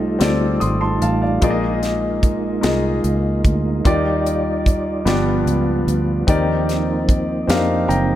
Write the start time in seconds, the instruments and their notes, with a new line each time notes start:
Already playing: fingered electric bass C2, grand piano C3 C4 F4 G4 A4 D#5 G5, tonewheel organ G3 A3 D#4 F4
0.19 fingered electric bass D2, grand piano C4 F4 G4 A4 D5, snare, closed hi-hat
0.60 fingered electric bass G#1, grand piano C6 D#6, closed hi-hat
0.81 grand piano A5 C6
1.02 fingered electric bass A1, grand piano F5 A5, closed hi-hat
1.22 grand piano D5 F5
1.41 fingered electric bass A#1, grand piano A#2 A#3 D#4 F4 G#4 D5, tonewheel organ G#3 A#3, kick, closed hi-hat
1.50 grand piano D#5
1.83 snare, closed hi-hat
2.23 kick, closed hi-hat
2.61 fingered electric bass C2, grand piano A#3 D#4 F4 G#4 D#5, snare, closed hi-hat
3.04 fingered electric bass C#2, closed hi-hat
3.45 fingered electric bass D2, kick, closed hi-hat
3.85 fingered electric bass D#2, grand piano D#3 A#3 D#4 F4 G4 D5, tonewheel organ G3 F4 D5, kick, closed hi-hat
4.26 closed hi-hat
4.66 kick, closed hi-hat
5.05 fingered electric bass G1, grand piano G2 B3 D4 F4 G4 D5, tonewheel organ F3 B3, snare, closed hi-hat
5.46 fingered electric bass C#2, closed hi-hat
5.87 fingered electric bass D2, closed hi-hat
6.27 fingered electric bass D#2, grand piano D#3 C4 D#4 G4 A#4 D5, tonewheel organ A#3 C4 D#4, kick, closed hi-hat
6.69 snare, closed hi-hat
7.09 kick, closed hi-hat
7.47 fingered electric bass F2, grand piano C4 D4 G4 A#4 F5, snare, closed hi-hat
7.55 grand piano D#4
7.88 fingered electric bass F#1, grand piano D#5 G5 A#5, closed hi-hat